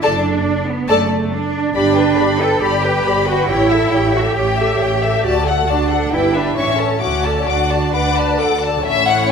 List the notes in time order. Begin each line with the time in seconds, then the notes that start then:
0.02 F#1 D4 A4 D5 A5
0.67 B3
0.88 F#1 A3 A4 D5 A5
1.32 D4
1.75 G1 D4 G4 D5 B5
1.96 B4 G5
2.18 G1 G4 D5 B5
2.40 A4 B4 G5
2.62 G1 G4 D5 B5
2.83 B4 G5
3.05 G1 G4 D5 B5
3.26 F#4 B4 G5
3.48 A1 E4 G4 C#5 G5
3.69 A4 E5
3.92 A1 G4 C#5 G5
4.14 F#4 A4 E5
4.26 G4
4.37 A1 G4 C#5 G5
4.58 A4 E5
4.81 A1 G4 C#5 G5
5.03 A4 E5
5.24 D2 F#4 D5 A5
5.47 A4 F#5
5.68 D2 D4 F#4 D5 A5
5.91 A4 F#5
6.12 G1 E4 G4 B4 G5
6.34 D4 G4 B4 E5
6.57 A1 C#4 C#5 E5 C#6
6.64 D4
6.72 C#4
6.79 A4 C#5 A5
7.02 D2 C#4 F#4 F#5 D6
7.25 A4 D5 A5
7.48 D2 D4 F#4 F#5 D6
7.72 D5 A5
7.95 D2 B4 F#5 D6
8.18 D5 A5
8.40 D2 A4 F#5 D6
8.64 D5 A5
8.86 A1 A2 A3 C#4 E4 C#5 E5
9.08 F#5